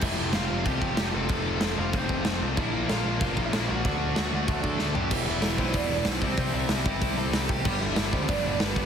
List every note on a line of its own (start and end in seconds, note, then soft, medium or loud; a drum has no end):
0.01 0.17 F1 medium
0.01 0.34 F2 medium
0.01 1.29 F2 medium
0.01 0.33 C3 medium
0.01 1.31 C3 medium
0.01 0.34 F3 medium
0.01 0.34 A3 loud
0.01 0.35 C4 loud
0.01 0.34 E4 medium
0.01 0.34 E5 medium
0.01 kick loud
0.01 crash loud
0.01 crash medium
0.06 1.33 F3 loud
0.19 0.33 F1 medium
0.33 0.49 F1 loud
0.33 0.50 F2 medium
0.33 0.49 C3 loud
0.33 0.49 F3 medium
0.33 0.49 A3 medium
0.33 0.49 C4 medium
0.33 0.65 F4 medium
0.33 0.68 F5 medium
0.33 snare loud
0.33 crash medium
0.49 0.65 F1 medium
0.49 0.64 F2 medium
0.49 0.65 C3 medium
0.49 0.66 F3 medium
0.49 0.65 A3 medium
0.49 0.66 C4 medium
0.65 0.81 C2 medium
0.65 0.98 F2 loud
0.65 0.97 C3 loud
0.65 0.99 F3 loud
0.65 0.99 A3 loud
0.65 0.99 C4 loud
0.65 1.10 G4 medium
0.65 1.10 G5 medium
0.65 kick loud
0.65 crash medium
0.82 0.97 F1 medium
0.82 kick medium
0.97 1.13 F1 medium
0.97 1.14 F2 medium
0.97 1.14 C3 medium
0.97 1.14 F3 medium
0.97 1.13 A3 medium
0.97 1.13 C4 medium
0.97 snare loud
0.97 crash medium
1.12 1.28 F1 medium
1.12 1.28 F2 medium
1.12 1.29 C3 medium
1.12 1.30 F3 medium
1.12 1.29 A3 medium
1.12 1.30 C4 medium
1.12 1.74 A4 medium
1.12 1.79 A5 loud
1.29 1.59 F1 medium
1.29 1.61 F2 medium
1.29 2.57 F2 medium
1.29 1.62 C3 loud
1.29 2.58 C3 loud
1.29 1.63 F3 medium
1.29 1.63 A3 loud
1.29 1.63 C4 loud
1.29 kick loud
1.29 crash medium
1.34 2.58 F3 medium
1.61 1.76 F1 medium
1.61 1.78 F2 medium
1.61 1.78 C3 medium
1.61 1.78 F3 medium
1.61 1.77 A3 medium
1.61 1.77 C4 loud
1.61 snare loud
1.61 crash medium
1.78 1.92 F1 medium
1.78 1.93 F2 medium
1.78 1.93 C3 medium
1.78 1.93 F3 medium
1.78 1.94 A3 medium
1.78 1.94 C4 loud
1.78 1.93 F4 medium
1.78 1.95 F5 medium
1.93 2.08 F1 medium
1.93 2.25 F2 loud
1.93 2.26 C3 loud
1.93 2.26 F3 loud
1.93 2.25 A3 loud
1.93 2.26 C4 loud
1.93 2.39 C4 medium
1.93 2.39 C5 medium
1.93 kick loud
1.93 crash medium
2.09 2.24 F1 medium
2.09 kick medium
2.25 2.40 F1 medium
2.25 2.42 F2 medium
2.25 2.42 C3 medium
2.25 2.42 F3 medium
2.25 2.42 A3 medium
2.25 2.41 C4 loud
2.25 snare loud
2.25 crash medium
2.42 2.56 C2 medium
2.42 2.58 F2 medium
2.42 2.57 C3 medium
2.42 2.57 F3 medium
2.42 2.57 A3 medium
2.42 2.57 C4 medium
2.57 2.72 A#1 medium
2.57 2.89 A#2 loud
2.57 3.84 A#2 loud
2.57 2.90 F3 medium
2.57 3.85 F3 medium
2.57 2.90 A#3 loud
2.57 2.91 D4 loud
2.57 2.87 E4 medium
2.57 2.90 E5 medium
2.57 kick loud
2.57 crash medium
2.61 3.86 A#3 loud
2.73 2.88 A#1 medium
2.89 3.04 A#1 medium
2.89 3.04 A#2 medium
2.89 3.05 F3 medium
2.89 3.05 A#3 medium
2.89 3.05 D4 loud
2.89 3.19 F4 medium
2.89 3.21 F5 medium
2.89 snare loud
2.89 crash medium
3.05 3.20 A#1 medium
3.05 3.19 A#2 medium
3.05 3.20 F3 medium
3.05 3.20 A#3 medium
3.05 3.20 D4 loud
3.21 3.36 F1 medium
3.21 3.52 A#2 loud
3.21 3.52 F3 loud
3.21 3.53 A#3 loud
3.21 3.52 D4 loud
3.21 3.36 F4 medium
3.21 3.38 F5 medium
3.21 kick loud
3.21 crash medium
3.37 3.51 A#1 loud
3.37 3.67 E4 medium
3.37 3.67 E5 medium
3.37 kick medium
3.53 3.67 A#1 medium
3.53 3.69 A#2 medium
3.53 3.70 F3 medium
3.53 3.69 A#3 medium
3.53 3.68 D4 medium
3.53 snare loud
3.53 crash medium
3.67 3.84 A#1 medium
3.67 3.85 A#2 medium
3.67 3.85 F3 medium
3.67 3.84 A#3 medium
3.67 3.84 D4 medium
3.67 4.75 F#4 medium
3.67 4.76 F#5 medium
3.85 4.14 D2 medium
3.85 5.11 D3 medium
3.85 4.15 D3 medium
3.85 4.16 F#3 loud
3.85 4.16 A3 medium
3.85 5.12 A3 medium
3.85 4.17 D4 loud
3.85 kick loud
3.85 crash medium
3.89 5.13 D4 medium
4.16 4.31 D2 medium
4.16 4.34 D3 medium
4.16 4.33 F#3 medium
4.16 4.33 A3 medium
4.16 4.32 D4 medium
4.16 snare loud
4.16 crash medium
4.33 4.47 D2 loud
4.33 4.48 D3 medium
4.33 4.48 F#3 medium
4.33 4.47 A3 medium
4.33 4.48 D4 medium
4.48 4.63 D2 medium
4.48 4.79 D3 loud
4.48 4.79 F#3 loud
4.48 4.80 A3 loud
4.48 4.80 D4 loud
4.48 kick loud
4.48 crash medium
4.62 4.78 D2 loud
4.62 4.92 A4 medium
4.62 4.94 A5 loud
4.62 kick medium
4.79 4.95 D2 medium
4.79 4.96 D3 medium
4.79 4.96 F#3 medium
4.79 4.96 A3 medium
4.79 4.95 D4 medium
4.79 snare medium
4.95 5.10 F#2 medium
4.95 5.11 D3 medium
4.95 5.11 F#3 medium
4.95 5.11 A3 medium
4.95 5.11 D4 loud
4.95 5.25 G4 medium
4.95 5.25 G5 loud
4.95 floor tom medium
5.10 5.26 E1 loud
5.10 5.73 E2 medium
5.10 5.29 E2 medium
5.10 5.74 B2 medium
5.10 5.28 B2 loud
5.10 5.60 E3 medium
5.10 5.59 G3 medium
5.10 5.58 B3 medium
5.10 kick loud
5.10 crash loud
5.14 5.28 E3 medium
5.14 5.58 E4 medium
5.25 5.42 E1 loud
5.25 5.56 E4 medium
5.25 5.59 E5 loud
5.29 5.43 E2 medium
5.29 5.43 B2 loud
5.29 5.45 E3 medium
5.42 5.58 E1 medium
5.42 5.60 E2 medium
5.42 5.60 B2 loud
5.42 5.60 E3 medium
5.42 snare loud
5.42 open hi-hat medium
5.58 5.73 B1 medium
5.58 5.75 E2 medium
5.58 5.76 B2 medium
5.58 5.76 E3 loud
5.58 6.21 E3 medium
5.58 6.21 G3 medium
5.58 6.21 B3 medium
5.58 5.74 C4 medium
5.58 6.21 E4 medium
5.58 5.75 C5 medium
5.58 kick medium
5.74 5.90 E1 loud
5.74 6.21 E2 medium
5.74 5.91 E2 medium
5.74 6.22 B2 medium
5.74 5.91 B2 medium
5.74 6.22 E3 medium
5.74 5.91 D4 medium
5.74 5.90 D5 loud
5.74 kick loud
5.74 open hi-hat medium
5.78 5.90 E3 medium
5.91 6.05 E1 medium
5.91 6.06 E2 medium
5.91 6.06 B2 loud
5.91 6.07 E3 loud
5.91 6.06 D4 medium
5.91 6.07 D5 loud
6.05 6.21 B1 medium
6.05 6.22 E2 medium
6.05 6.22 B2 medium
6.05 6.22 E3 loud
6.05 6.36 C4 medium
6.05 6.36 C5 medium
6.05 snare loud
6.05 open hi-hat medium
6.21 6.37 C2 medium
6.21 6.68 C3 medium
6.21 6.39 C3 medium
6.21 6.69 G3 medium
6.21 6.39 G3 loud
6.21 6.68 C4 medium
6.21 6.37 C4 loud
6.21 6.69 E4 medium
6.21 kick medium
6.37 6.53 C2 medium
6.37 6.53 C3 medium
6.37 6.54 G3 medium
6.37 6.54 C4 loud
6.37 6.53 C4 medium
6.37 6.55 C5 medium
6.37 kick loud
6.37 open hi-hat medium
6.54 6.68 C2 loud
6.54 6.71 C3 medium
6.54 6.71 G3 medium
6.54 6.70 C4 loud
6.54 6.84 E4 medium
6.54 6.84 E5 loud
6.69 6.84 C2 loud
6.69 7.48 C3 medium
6.69 6.85 C3 medium
6.69 7.48 G3 medium
6.69 6.87 G3 medium
6.69 7.48 C4 medium
6.69 6.86 C4 loud
6.69 7.49 E4 medium
6.69 snare loud
6.69 open hi-hat medium
6.85 7.00 G1 loud
6.85 7.02 C3 loud
6.85 7.50 C3 medium
6.85 7.49 G3 medium
6.85 7.01 G3 loud
6.85 7.48 C4 loud
6.85 7.01 C4 loud
6.85 7.15 E4 medium
6.85 7.15 E5 medium
6.85 kick medium
7.01 7.16 C2 medium
7.01 7.17 C3 medium
7.01 7.18 G3 medium
7.01 7.18 C4 medium
7.01 kick loud
7.01 open hi-hat medium
7.17 7.32 C2 loud
7.17 7.35 C3 loud
7.17 7.34 G3 loud
7.17 7.33 C4 loud
7.17 7.47 A4 medium
7.17 7.50 A5 loud
7.33 7.48 C2 loud
7.33 7.49 C3 medium
7.33 7.49 G3 medium
7.33 7.50 C4 loud
7.33 snare loud
7.33 open hi-hat medium
7.49 7.64 C2 medium
7.49 7.65 C3 loud
7.49 7.65 G3 medium
7.49 7.65 C4 loud
7.49 7.80 G4 medium
7.49 7.79 G5 loud
7.49 kick loud
7.64 7.80 G1 loud
7.64 8.11 G2 loud
7.64 7.82 G2 medium
7.64 8.11 D3 loud
7.64 7.80 D3 medium
7.64 8.11 G3 loud
7.64 7.80 G3 loud
7.64 8.10 B3 loud
7.64 8.11 D4 medium
7.64 kick loud
7.64 crash loud
7.81 7.96 G1 loud
7.81 7.96 G2 medium
7.81 7.97 D3 medium
7.81 7.97 G3 loud
7.81 8.11 E4 medium
7.81 8.14 E5 loud
7.96 8.12 G1 loud
7.96 8.13 G2 medium
7.96 8.12 D3 loud
7.96 8.12 G3 medium
7.96 snare loud
7.96 open hi-hat medium
8.11 8.28 D2 medium
8.11 8.86 G2 medium
8.11 8.27 G2 medium
8.11 8.86 D3 medium
8.11 8.28 D3 medium
8.11 8.86 G3 loud
8.11 8.29 G3 loud
8.11 8.86 B3 medium
8.11 8.28 C4 medium
8.11 8.86 D4 loud
8.11 8.28 C5 medium
8.11 kick medium
8.28 8.43 G1 loud
8.28 8.86 G2 medium
8.28 8.45 G2 medium
8.28 8.45 D3 medium
8.28 8.86 D3 medium
8.28 8.44 G3 medium
8.28 8.86 G3 medium
8.28 8.44 D4 medium
8.28 8.45 D5 medium
8.28 kick loud
8.28 open hi-hat medium
8.44 8.59 G1 loud
8.44 8.60 G2 medium
8.44 8.61 D3 medium
8.44 8.62 G3 loud
8.44 8.61 D4 medium
8.44 8.60 D5 loud
8.60 8.75 G1 medium
8.60 8.78 G2 medium
8.60 8.77 D3 medium
8.60 8.76 G3 medium
8.60 8.86 B3 medium
8.60 8.86 B4 loud
8.60 snare loud
8.60 open hi-hat medium
8.76 8.86 G1 medium
8.76 8.86 G2 medium
8.76 8.86 D3 medium
8.76 8.86 G3 loud
8.76 kick medium